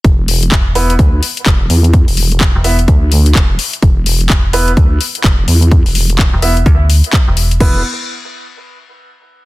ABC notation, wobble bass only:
X:1
M:4/4
L:1/16
Q:"Swing 16ths" 1/4=127
K:C
V:1 name="Wobble bass" clef=bass
E,,,4 z4 D,,2 z2 E,,,2 E,,2- | E,, E,,,4 z3 D,,4 E,,,2 z2 | E,,,4 z4 D,,2 z2 E,,,2 E,,2- | E,, E,,,4 z8 z3 |
E,,,2 z12 z2 |]